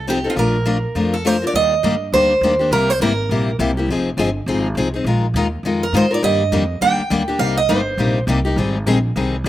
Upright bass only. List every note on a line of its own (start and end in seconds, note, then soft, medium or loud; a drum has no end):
0.00 0.24 C2 medium
0.36 0.83 A#1 medium
0.95 1.42 F2 medium
1.54 1.82 D#2 medium
1.83 2.12 G2 medium
2.12 2.40 D2 medium
2.41 2.70 D#2 medium
2.71 2.99 C2 medium
3.00 3.29 G#1 medium
3.29 3.58 A#1 medium
3.59 3.88 C2 loud
3.88 4.16 F1 medium
4.17 4.46 G1 medium
4.46 4.74 G#1 medium
4.75 5.04 C2 loud
5.04 5.33 A#1 medium
5.34 5.62 D#2 medium
5.63 5.92 F2 medium
5.93 6.22 G#2 medium
6.22 6.51 G2 medium
6.52 6.80 F2 medium
6.81 6.97 D#2 medium
6.99 muted upright bass stroke soft
7.10 7.38 D2 medium
7.39 7.68 C2 medium
7.69 7.97 G1 medium
7.97 8.26 A#1 medium
8.27 8.56 C2 loud
8.56 8.85 G#1 medium
8.86 9.15 A#1 medium
9.16 9.44 C2 medium
9.44 9.49 D#2 loud